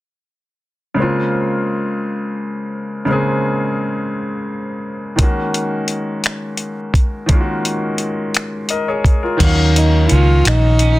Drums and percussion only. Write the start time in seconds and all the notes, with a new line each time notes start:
5.19 kick, closed hi-hat
5.54 closed hi-hat
5.88 closed hi-hat
6.24 finger snap, closed hi-hat
6.57 closed hi-hat
6.94 kick, closed hi-hat
7.29 kick, closed hi-hat
7.65 closed hi-hat
7.98 closed hi-hat
8.34 finger snap, closed hi-hat
8.69 closed hi-hat
9.04 kick, closed hi-hat
9.40 kick, closed hi-hat, crash
9.76 closed hi-hat
10.09 closed hi-hat
10.45 finger snap, closed hi-hat
10.79 closed hi-hat